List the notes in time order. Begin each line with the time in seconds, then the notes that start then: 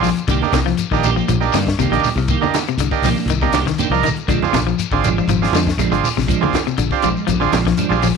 Already playing: A#1
0.03 F3, muted clean electric guitar stroke, open hi-hat, low conga, shekere
0.17 muted clean electric guitar stroke, closed hi-hat, shekere
0.28 C2 D3 D#3 A#3 D4 G4, kick, closed hi-hat, high conga, shekere
0.42 A#3 D4 D#4 G4, high conga, shekere
0.52 C2 C3, muted clean electric guitar stroke, kick, snare, closed hi-hat, high conga, shekere
0.66 F3, muted clean electric guitar stroke, snare, shekere
0.77 muted clean electric guitar stroke, closed hi-hat, high conga, shekere
0.91 A#1 D#3 A#3 D4 D#4 G4, muted clean electric guitar stroke, kick, shekere
1.03 D#3 A#3 D4 G4, closed hi-hat, low conga, shekere
1.16 F3 A#3 D4 G4, shekere
1.28 A#1 F3, closed hi-hat, high conga, low conga, shekere
1.40 A#3 D4 D#4 G4, muted clean electric guitar stroke, shekere
1.53 G2 D3 D#3 A#3 D4, snare, closed hi-hat, high conga, shekere
1.57 G4
1.66 muted clean electric guitar stroke, kick, snare, closed hi-hat, shekere
1.78 C2 C3 D#3 A#3 D4 G4, closed hi-hat, high conga, shekere
1.91 A#1 D3 A#3 D4 D#4 G4, closed hi-hat, shekere
2.03 muted fingered electric bass stroke, muted clean electric guitar stroke, open hi-hat, low conga, shekere
2.16 C2 C3, muted clean electric guitar stroke, shekere
2.28 D#3 A#3 G4, muted clean electric guitar stroke, kick, closed hi-hat, shekere
2.41 D3 A#3 D4 D#4 G4, high conga, shekere
2.54 muted clean electric guitar stroke, snare, closed hi-hat, high conga, shekere
2.68 C3, muted clean electric guitar stroke, closed hi-hat, shekere
2.77 C2 D3, muted clean electric guitar stroke, closed hi-hat, high conga, shekere
2.91 A#3 D4 D#4 G4, muted clean electric guitar stroke, kick, shekere
3.02 C2 D#3 F3 A#3 D4 G4, snare, open hi-hat, high conga, low conga, shekere
3.17 A#3 D4, shekere
3.26 C2, closed hi-hat, shekere
3.30 D#3
3.41 C3 A#3 D4 D#4 G4, muted clean electric guitar stroke, kick, shekere
3.51 C2 D#3, snare, closed hi-hat, high conga, shekere
3.55 A#3 D4 G4
3.66 D#3, muted clean electric guitar stroke, kick, snare, shekere
3.78 D#3 A#3 D4 G4, closed hi-hat, high conga, shekere
3.90 C2 F3 A#3 D4 D#4 A#4, shekere
4.03 D#3, muted clean electric guitar stroke, kick, snare, closed hi-hat, low conga, shekere
4.16 muted clean electric guitar stroke, closed hi-hat, shekere
4.28 A#1 D3 F3 G#3 D4, kick, closed hi-hat, shekere
4.42 C4 D4 F4 G#4, high conga, shekere
4.53 A#1 C3, muted clean electric guitar stroke, kick, snare, closed hi-hat, high conga, shekere
4.67 F3, muted clean electric guitar stroke, shekere
4.79 muted clean electric guitar stroke, closed hi-hat, high conga, shekere
4.91 G#1 D3 C4 D4 F4 G#4, muted clean electric guitar stroke, kick, shekere
5.04 F3 G#3 D4, closed hi-hat, high conga, low conga, shekere
5.17 F3 G#3 D4, shekere
5.27 G#1 F3, closed hi-hat, high conga, low conga, shekere
5.42 C4 D4 F4 G#4, muted clean electric guitar stroke, snare, shekere
5.52 F2 F3 G#3, closed hi-hat, high conga, shekere
5.56 D3 D4, snare
5.67 muted clean electric guitar stroke, kick, snare, closed hi-hat, shekere
5.77 A#1 F3 G#3 D4, muted clean electric guitar stroke, closed hi-hat, high conga, shekere
5.91 G#1 D3 C4 D4 F4 G#4, closed hi-hat, shekere
6.04 muted clean electric guitar stroke, open hi-hat, low conga, shekere
6.16 A#1 C3, muted clean electric guitar stroke, snare, shekere
6.28 F3 G#3 D4, kick, closed hi-hat, high conga, shekere
6.41 D3 C4 D4 F4 G#4, high conga, shekere
6.53 muted clean electric guitar stroke, kick, snare, closed hi-hat, high conga, shekere
6.66 C3, muted clean electric guitar stroke, closed hi-hat, shekere
6.78 A#1 D3, muted clean electric guitar stroke, closed hi-hat, high conga, shekere
6.90 C4 D4 F4 G4, muted clean electric guitar stroke, kick, shekere
7.02 A#1 F3 G#3 D4, closed hi-hat, low conga, shekere
7.16 G#3, muted clean electric guitar stroke, shekere
7.27 A#1 F3, closed hi-hat, high conga, low conga, shekere
7.40 D3 C4 D4 F4 G#4, muted clean electric guitar stroke, shekere
7.52 A#1 F3 G#3 D4, snare, closed hi-hat, high conga, shekere
7.65 F3, muted clean electric guitar stroke, kick, snare, shekere
7.77 F3 G#3 D4, closed hi-hat, high conga, shekere
7.89 A#1 G3 C4 D4 F4 G#4, shekere
8.02 F3, muted clean electric guitar stroke, open hi-hat, low conga, shekere